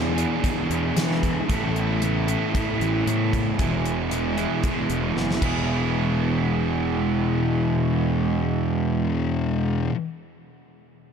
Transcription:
0.00 0.24 E2 loud
0.00 0.42 E2 medium
0.00 0.43 B2 medium
0.00 0.18 E3 medium
0.00 0.46 E3 medium
0.00 0.17 B3 loud
0.00 0.15 D4 loud
0.00 0.15 G#4 loud
0.16 1.48 E3 medium
0.16 1.49 B3 medium
0.16 1.47 D4 medium
0.16 1.46 G#4 medium
0.16 closed hi-hat medium
0.43 0.95 E2 medium
0.43 0.72 B2 medium
0.43 0.69 E3 loud
0.43 kick medium
0.43 closed hi-hat medium
0.70 0.91 E2 medium
0.70 0.96 B2 medium
0.70 0.97 E3 medium
0.70 closed hi-hat medium
0.96 1.47 E2 medium
0.96 1.47 B2 medium
0.96 1.39 E3 medium
0.96 1.50 E3 medium
0.96 snare loud
0.96 closed hi-hat medium
1.11 snare soft
1.23 kick medium
1.23 closed hi-hat medium
1.48 2.35 A1 loud
1.48 2.00 A2 medium
1.48 2.02 E3 loud
1.48 2.26 A3 loud
1.48 2.03 A3 medium
1.48 2.29 B3 loud
1.48 2.28 E4 loud
1.48 2.26 A4 loud
1.48 kick loud
1.48 closed hi-hat medium
1.76 closed hi-hat medium
2.01 2.52 A2 medium
2.01 2.55 E3 medium
2.01 2.55 A3 medium
2.01 closed hi-hat medium
2.27 3.58 A3 medium
2.27 3.59 B3 medium
2.27 3.60 E4 medium
2.27 3.57 A4 medium
2.27 closed hi-hat medium
2.54 3.05 A2 medium
2.54 2.82 E3 medium
2.54 2.78 A3 medium
2.54 kick medium
2.54 closed hi-hat medium
2.79 3.02 A1 medium
2.79 3.07 E3 medium
2.79 3.08 A3 medium
2.79 closed hi-hat soft
3.06 3.57 A2 medium
3.06 3.49 A2 medium
3.06 3.60 E3 medium
3.06 3.58 A3 medium
3.06 closed hi-hat medium
3.33 kick medium
3.33 closed hi-hat medium
3.58 4.45 E1 loud
3.58 4.09 E2 medium
3.58 4.10 B2 medium
3.58 4.36 E3 medium
3.58 4.11 E3 loud
3.58 4.36 G#3 medium
3.58 4.36 B3 loud
3.58 4.36 E4 loud
3.58 4.36 G#4 medium
3.58 kick loud
3.58 closed hi-hat medium
3.85 closed hi-hat medium
4.10 4.61 E2 medium
4.10 4.62 B2 medium
4.10 4.64 E3 medium
4.10 closed hi-hat medium
4.37 5.40 E3 medium
4.37 5.41 G#3 medium
4.37 5.42 B3 medium
4.37 5.42 E4 medium
4.37 5.42 G#4 medium
4.37 closed hi-hat medium
4.62 5.13 E2 medium
4.62 4.91 B2 medium
4.62 4.88 E3 loud
4.62 kick loud
4.62 closed hi-hat medium
4.89 5.11 E1 medium
4.89 5.14 B2 medium
4.89 5.16 E3 medium
4.89 closed hi-hat medium
5.14 5.40 F#1 medium
5.14 5.39 E2 medium
5.14 5.41 B2 medium
5.14 5.43 E3 medium
5.14 snare medium
5.31 snare medium
5.40 9.88 E1 medium
5.40 9.91 E2 medium
5.40 9.93 B2 medium
5.40 9.91 E3 medium
5.40 9.95 E3 loud
5.40 9.92 G#3 medium
5.40 9.93 B3 medium
5.40 9.94 E4 medium
5.40 kick medium
5.40 crash medium
5.45 9.95 G#4 medium

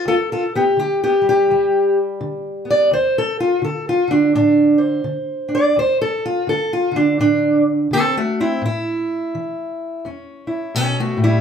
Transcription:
0.05 0.71 D2 medium
0.05 0.13 F4 medium
0.05 0.30 A4 loud
0.32 0.42 F4 medium
0.32 0.54 A4 medium
0.55 0.64 B3 medium
0.55 0.78 G4 medium
0.77 1.42 D3 medium
0.77 1.02 G4 medium
1.04 1.14 B3 medium
1.04 1.26 G4 medium
1.22 1.49 G3 soft
1.29 1.98 G4 loud
1.50 2.15 D2 medium
1.50 2.92 G3 medium
2.21 2.86 D3 medium
2.65 2.92 B3 soft
2.70 2.92 D5 loud
2.91 3.56 D2 medium
2.91 3.16 C5 loud
3.18 3.40 A4 medium
3.40 3.63 F4 medium
3.62 4.05 D3 medium
3.62 3.87 A4 medium
3.89 4.11 F4 medium
4.08 5.03 D3 soft
4.08 4.34 D4 medium
4.35 5.00 A2 medium
4.35 4.77 D4 medium
4.78 5.53 C5 soft
5.04 5.70 D3 medium
5.49 5.73 D4 soft
5.55 5.77 D5 loud
5.76 6.42 D2 medium
5.76 6.01 C5 medium
6.01 6.24 A4 medium
6.25 6.48 F4 medium
6.47 6.90 D3 medium
6.47 6.72 A4 loud
6.73 6.96 F4 medium
6.92 7.90 D3 soft
6.96 7.19 D4 medium
7.19 7.84 A2 medium
7.19 7.62 D4 loud
7.91 8.14 D3 medium
7.91 8.15 C4 medium
7.91 8.15 A4 loud
8.17 8.39 A3 medium
8.17 8.39 F#4 medium
8.40 8.63 C4 medium
8.40 8.62 E4 medium
8.62 9.27 A2 medium
8.62 10.05 E4 loud
9.35 9.99 E3 medium
10.05 10.69 E2 medium
10.05 10.75 C#4 soft
10.47 10.76 E4 soft
10.75 11.17 B2 medium
10.75 10.99 C#4 medium
10.75 10.99 A4 loud
11.00 11.23 A3 medium
11.00 11.23 F#4 medium
11.17 11.41 A2 medium
11.24 11.41 G3 medium
11.24 11.41 E4 medium

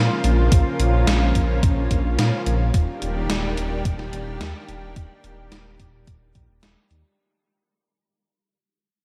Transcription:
0.00 2.70 C#3 medium
0.00 2.70 F3 medium
0.00 2.70 A#3 medium
0.00 2.70 F4 medium
0.00 0.50 C5 medium
0.10 0.21 C#4 medium
0.10 0.21 F4 medium
0.10 0.21 A#4 medium
0.10 0.21 C5 medium
0.24 0.49 A#1 medium
0.24 0.32 C#4 medium
0.24 0.32 F4 medium
0.24 0.32 A#4 medium
0.24 0.32 C5 medium
0.24 closed hi-hat medium
0.52 0.65 A#1 loud
0.52 0.90 C#4 medium
0.52 2.72 C#4 medium
0.52 0.90 F4 medium
0.52 0.90 A#4 medium
0.52 0.90 C5 medium
0.52 kick loud
0.52 closed hi-hat loud
0.80 1.05 A#1 medium
0.80 closed hi-hat medium
0.93 1.32 C#4 loud
0.93 1.32 F4 medium
0.93 1.32 A#4 medium
0.93 1.32 C5 loud
1.07 1.33 A#1 loud
1.07 snare loud
1.07 closed hi-hat medium
1.35 1.60 A#1 loud
1.35 1.74 C#4 loud
1.35 1.74 F4 medium
1.35 1.74 A#4 medium
1.35 1.74 C5 loud
1.35 kick medium
1.35 closed hi-hat medium
1.63 1.88 A#1 medium
1.63 kick loud
1.63 closed hi-hat medium
1.77 1.85 C#4 medium
1.77 1.85 F4 medium
1.77 1.85 A#4 medium
1.77 1.85 C5 medium
1.91 2.03 A#1 medium
1.91 1.99 C#4 medium
1.91 1.99 F4 medium
1.91 1.99 A#4 medium
1.91 1.99 C5 loud
1.91 kick medium
1.91 closed hi-hat medium
2.05 2.17 A#1 medium
2.19 2.31 A#2 medium
2.19 snare loud
2.19 closed hi-hat medium
2.32 2.43 C#4 medium
2.32 2.43 F4 medium
2.32 2.43 A#4 medium
2.32 2.43 C5 medium
2.46 2.72 A#1 medium
2.46 2.54 C#4 medium
2.46 2.54 F4 medium
2.46 2.54 A#4 medium
2.46 2.54 C5 medium
2.46 closed hi-hat medium
2.74 2.87 D#1 loud
2.74 7.15 D#3 medium
2.74 7.15 G3 medium
2.74 7.14 A#3 medium
2.74 7.15 D4 medium
2.74 7.14 G4 medium
2.74 kick loud
2.74 closed hi-hat medium
3.02 3.27 D#1 medium
3.02 closed hi-hat medium
3.30 3.55 D#1 loud
3.30 snare loud
3.30 closed hi-hat medium
3.57 3.83 D#1 medium
3.57 closed hi-hat medium
3.85 4.10 D#1 medium
3.85 kick loud
3.85 closed hi-hat medium
3.99 snare soft
4.13 4.26 D#1 medium
4.13 closed hi-hat medium
4.27 4.40 D#1 medium
4.41 4.53 D#2 medium
4.41 snare loud
4.41 closed hi-hat medium
4.68 4.94 D#1 medium
4.68 closed hi-hat medium
4.96 5.09 D#1 loud
4.96 kick loud
4.96 closed hi-hat medium
5.24 5.49 D#1 medium
5.24 closed hi-hat medium
5.52 5.77 D#1 loud
5.52 snare loud
5.52 closed hi-hat medium
5.80 6.05 D#1 medium
5.80 kick medium
5.80 closed hi-hat medium
6.07 6.33 D#1 medium
6.07 kick loud
6.07 closed hi-hat medium
6.35 6.48 A#1 loud
6.35 kick medium
6.35 closed hi-hat medium
6.49 6.62 D#1 loud
6.63 6.76 D#1 medium
6.63 snare loud
6.63 closed hi-hat medium
6.91 7.03 D#2 loud
6.91 closed hi-hat medium

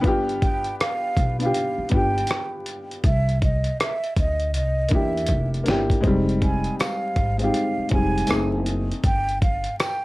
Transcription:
0.01 0.66 G1 medium
0.01 1.11 B3 loud
0.01 1.12 D4 medium
0.01 1.13 F4 loud
0.01 kick loud
0.01 closed hi-hat medium
0.07 1.14 G4 loud
0.29 closed hi-hat soft
0.42 0.76 G5 medium
0.42 kick medium
0.42 closed hi-hat medium
0.64 closed hi-hat soft
0.80 1.37 F5 medium
0.80 cross-stick loud
0.80 closed hi-hat medium
1.17 1.48 B1 medium
1.17 kick medium
1.17 closed hi-hat medium
1.39 1.83 B3 medium
1.39 1.84 D4 medium
1.39 1.89 F5 medium
1.39 closed hi-hat soft
1.43 1.85 F4 medium
1.43 1.86 G4 medium
1.54 closed hi-hat medium
1.78 muted upright bass stroke soft
1.89 2.23 G1 loud
1.89 3.03 B3 medium
1.89 3.04 D4 medium
1.89 kick medium
1.89 closed hi-hat medium
1.93 3.05 F4 medium
1.93 3.06 G4 medium
1.93 2.50 G5 medium
2.18 closed hi-hat soft
2.27 cross-stick loud
2.27 closed hi-hat medium
2.66 closed hi-hat medium
2.91 closed hi-hat medium
3.04 3.66 C2 medium
3.04 3.39 E5 medium
3.04 kick loud
3.04 closed hi-hat medium
3.29 closed hi-hat soft
3.42 3.83 D#5 medium
3.42 kick medium
3.42 closed hi-hat medium
3.64 closed hi-hat soft
3.80 4.14 E5 medium
3.80 cross-stick loud
3.80 closed hi-hat medium
4.04 closed hi-hat soft
4.16 4.55 D2 medium
4.16 4.51 D#5 medium
4.16 kick medium
4.16 closed hi-hat medium
4.40 closed hi-hat soft
4.54 4.85 C2 medium
4.54 4.95 D#5 medium
4.54 closed hi-hat medium
4.89 5.31 E2 medium
4.89 5.55 A#3 medium
4.89 5.55 D4 medium
4.89 kick medium
4.89 closed hi-hat medium
4.93 5.57 E4 medium
4.93 5.58 G4 medium
4.93 5.50 E5 medium
5.17 closed hi-hat soft
5.26 5.60 F1 medium
5.26 kick medium
5.26 closed hi-hat loud
5.54 closed hi-hat soft
5.64 5.98 G1 medium
5.64 5.97 A#3 medium
5.64 5.98 D4 medium
5.64 closed hi-hat medium
5.68 5.99 E4 medium
5.68 6.00 G4 loud
5.68 snare medium
5.90 kick medium
5.90 closed hi-hat medium
6.01 6.66 F1 medium
6.01 7.10 G#3 loud
6.01 7.11 C4 loud
6.01 kick loud
6.01 closed hi-hat medium
6.05 7.13 G3 loud
6.05 7.12 D#4 loud
6.29 closed hi-hat soft
6.42 6.76 G#5 medium
6.42 kick medium
6.42 closed hi-hat medium
6.64 closed hi-hat soft
6.79 7.37 F5 medium
6.79 cross-stick loud
6.79 closed hi-hat medium
6.79 tambourine medium
7.16 7.47 G#1 medium
7.16 kick medium
7.16 closed hi-hat medium
7.38 7.82 G#3 medium
7.38 7.83 C4 medium
7.38 closed hi-hat soft
7.42 7.84 D#4 medium
7.42 7.85 G4 medium
7.42 7.89 F5 medium
7.54 closed hi-hat medium
7.78 muted upright bass stroke soft
7.88 8.22 F1 medium
7.88 8.27 G#3 medium
7.88 8.27 C4 medium
7.88 kick medium
7.88 closed hi-hat medium
7.93 8.30 G3 medium
7.93 8.29 D#4 medium
7.93 8.49 G#5 medium
8.18 closed hi-hat soft
8.27 8.91 F#1 loud
8.27 8.92 A3 medium
8.27 8.93 C4 medium
8.27 closed hi-hat medium
8.27 tambourine medium
8.31 8.94 D#4 medium
8.31 8.95 G#4 medium
8.31 cross-stick medium
8.66 closed hi-hat medium
8.92 closed hi-hat medium
9.04 9.66 G1 medium
9.04 9.39 G5 medium
9.04 kick loud
9.04 closed hi-hat medium
9.29 closed hi-hat soft
9.42 9.76 F5 medium
9.42 kick medium
9.42 closed hi-hat medium
9.64 closed hi-hat soft
9.79 10.05 G5 medium
9.79 cross-stick loud
9.79 closed hi-hat medium
9.79 tambourine medium

